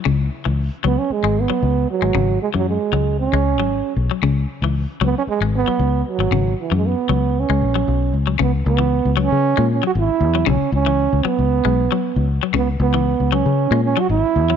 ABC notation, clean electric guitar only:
X:1
M:4/4
L:1/16
Q:"Swing 16ths" 1/4=115
K:C#dor
V:1 name="Clean electric guitar" clef=bass
C,2 z E,2 z F,2 z G,2 F,2 z2 G, | C,2 z E,2 z F,2 z G,2 F,2 z2 F, | C,2 z E,2 z F,2 z G,2 F,2 z2 F, | C,2 z E,2 z F,2 z G,2 F,2 z2 F, |
C,2 z E,2 z F,2 z G,2 F,2 z2 F, | C,2 z E,2 z F,2 z G,2 F,2 z2 F, | C,2 z E,2 z F,2 z G,2 F,2 z2 F, |]